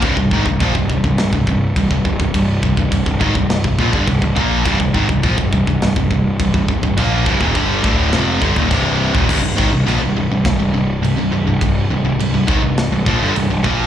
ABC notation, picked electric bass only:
X:1
M:4/4
L:1/16
Q:1/4=104
K:Cm
V:1 name="Picked electric bass" clef=bass
C,,, C,,, A,,, C,,, B,,, C,,, C,,, C,,, C,,, C,,, C,,,2 C,,, C,,, C,,, C,,, | C,,,2 C,,, C,,, C,,, C,,, A,,, C,,,2 C,,, B,,, G,,, C,,, C,,, B,,,2 | C,,, C,,, A,,, C,,, B,,, C,,, C,,, C,,, C,,, C,,, C,,,2 C,,, C,,, C,,, C,,, | B,,,2 C,,, E,,, G,,,2 D,,,2 F,,,2 G,,, E,,, C,,,3 E,,, |
C,,, C,,, A,,, C,,, B,,, C,,, C,,, C,,, C,,, C,,, C,,,2 C,,, C,,, C,,, C,,, | C,,,2 C,,, C,,, C,,, C,,, A,,, C,,,2 C,,, B,,, G,,, C,,, C,,, B,,,2 |]